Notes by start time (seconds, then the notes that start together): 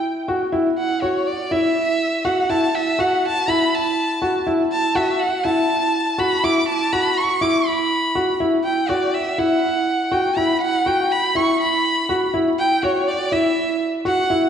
Already playing: G5
0.28 F#4
0.52 E4
0.78 F#5
1.02 F#4 C#5
1.27 D5
1.51 E4 E5
2.25 F#4 F#5
2.50 E4 A5
2.75 E5
2.99 F#4 F#5
3.25 A5
3.48 E4 B5
3.75 A5
4.22 F#4
4.47 E4
4.72 A5
4.95 F#4 E5
5.20 F#5
5.44 E4 A5
6.18 F#4 B5
6.44 E4 D6
6.69 A5
6.93 F#4 B5
7.17 C#6
7.41 E4 D6
7.66 B5
8.15 F#4
8.40 E4
8.64 G5
8.89 F#4 D5
9.14 E5
9.38 E4 F#5
10.12 F#4 G5
10.37 E4 B5
10.62 F#5
10.86 F#4 G5
11.12 B5
11.35 E4 C#6
11.61 B5
12.09 F#4
12.34 E4
12.59 G5
12.83 F#4 C#5
13.08 D5
13.32 E4 E5
14.05 F#4 F#5
14.30 E4